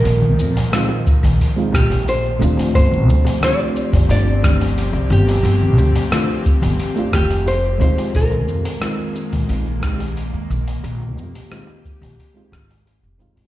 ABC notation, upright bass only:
X:1
M:4/4
L:1/16
Q:1/4=89
K:Bbmix
V:1 name="Upright bass" clef=bass
B,,,2 F,, z4 B,,, z2 B,,, B,,,3 E,, z | G,,,2 D,, z4 G,,, G,,,4- G,,, C,, G,,,2 | G,,,2 D,, z4 G,,, z2 F,,,4 D,, z | B,,,2 F,, z4 B,,, B,,,4- B,,, E,, B,,,2 |
B,,,2 F,, z4 B,,, z2 A,,,3 F,,, F,, A,,, |]